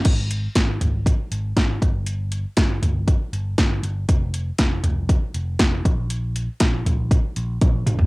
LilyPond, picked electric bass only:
\new Staff \with { instrumentName = "Picked electric bass" } { \clef bass \time 4/4 \key g \phrygian \tempo 4 = 119 aes,,4 aes,,8 aes,,8. r16 aes,,8 aes,,8 g,,8~ | g,,4 g,,8 g,,8. r16 g,,8 g,,8 g,,8 | f,,4 f,,8 f,,8. r16 f,,8 r8 bes,,8~ | bes,,4 bes,,8 bes,,8. r16 bes,,8 bes,,8 g,,8 | }